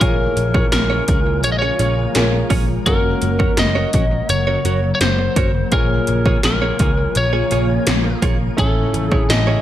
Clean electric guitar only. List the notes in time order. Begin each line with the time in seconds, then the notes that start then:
0.01 C#4 F4 G#4 C#5
0.19 muted clean electric guitar stroke
0.36 muted clean electric guitar stroke
0.54 C#4 F4 G#4 C#5
0.72 muted clean electric guitar stroke
0.90 C#4 F4 G#4 C#5
1.08 C#4 F4 G#4 C#5
1.26 muted clean electric guitar stroke
1.44 muted clean electric guitar stroke
1.62 C#4 F4 G#4 C#5
1.79 C#4 F4 G#4 C#5
1.97 muted clean electric guitar stroke
2.15 muted clean electric guitar stroke
2.32 muted clean electric guitar stroke
2.50 C#4 F4 G#4 C#5
2.68 muted clean electric guitar stroke
2.86 C#4 F#4 A#4 C#5
3.04 muted clean electric guitar stroke
3.21 muted clean electric guitar stroke
3.39 C#4 F#4 A#4 C#5
3.57 muted clean electric guitar stroke
3.75 C#4 F#4 A#4 C#5
3.94 C#4 F#4 A#4 C#5
4.11 muted clean electric guitar stroke
4.29 muted clean electric guitar stroke
4.47 C#4 F#4 A#4 C#5
4.65 C#4 F#4 A#4 C#5
4.83 muted clean electric guitar stroke
5.01 muted clean electric guitar stroke
5.19 muted clean electric guitar stroke
5.36 C#4 F#4 A#4 C#5
5.55 muted clean electric guitar stroke
5.72 A#3 F4 G#4 C#5
5.90 muted clean electric guitar stroke
6.08 muted clean electric guitar stroke
6.26 A#3 F4 G#4 C#5
6.62 A#3 F4 G#4 C#5
6.79 A#3 F4 G#4 C#5
6.98 muted clean electric guitar stroke
7.16 muted clean electric guitar stroke
7.33 A#3 F4 G#4 C#5
7.51 A#3 F4 G#4 C#5
7.69 muted clean electric guitar stroke
7.87 muted clean electric guitar stroke
8.04 muted clean electric guitar stroke
8.22 A#3 F4 G#4 C#5
8.40 muted clean electric guitar stroke
8.58 C#4 E4 G#4 C#5
8.76 muted clean electric guitar stroke
8.94 muted clean electric guitar stroke
9.12 C#4 E4 G#4 C#5
9.29 muted clean electric guitar stroke
9.47 C#4 E4 G#4 C#5